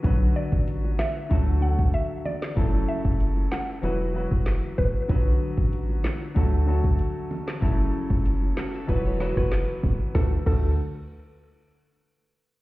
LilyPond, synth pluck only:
\new Staff \with { instrumentName = "Synth pluck" } { \time 4/4 \key d \major \tempo 4 = 95 r8 d''16 r8. e''16 r8. fis''16 r16 e''16 r16 d''16 r16 | r8 e''16 r8. fis''16 r4. r16 b'16 r16 | r1 | r1 |
a'8 a'8 r2. | }